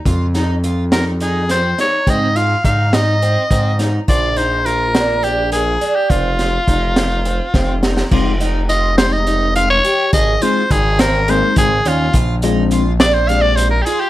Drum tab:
CC |--------------|--------------|--------------|--------------|
HH |x-x-x-x-x-x-x-|x-x-x-x-x-x-x-|x-x-x-x-x-x-x-|x-x-x-x-x-----|
SD |--o---o---o-o-|------o-----o-|------o-------|--o---o---o-oo|
BD |o-------------|o---o-----o---|o-------------|o---o-----o---|

CC |x-------------|--------------|--------------|
HH |--x-x-x-x-x-x-|x-x-x-x-x-x-x-|x-x-x-x-x-x-x-|
SD |------o-------|------o-------|------o-------|
BD |o-------------|o---o-----o---|o-------------|